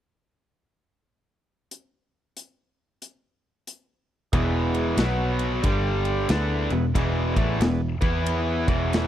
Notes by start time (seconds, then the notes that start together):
1.71 closed hi-hat
2.37 closed hi-hat
3.02 closed hi-hat
3.67 closed hi-hat
4.32 E1 E2 B2 E3 G#3 B3 E4 G#4, kick, ride
4.74 ride
4.95 B1 B2 F#3 B3 F#4 B4, snare, ride
4.99 F#3
5.39 ride
5.61 G1 G2 D3 G3 D4 G4 D5, kick, ride
6.05 ride
6.29 D2 D3 A3 B3 D4 E4 G#4 B4, snare, ride
6.70 E1 E2 B2, ride
6.94 E1 E2 B2 E3 B3 E4 G#4 D5, kick, ride
7.36 A1 A2 E3 A3, kick, ride
7.60 E1 E2 B2, snare, ride
8.01 E2 E3 B3 E4, kick, ride
8.22 B3 E4 G#4 C#5
8.26 ride
8.68 E1 E2 B2 E3, kick, ride
8.93 snare, ride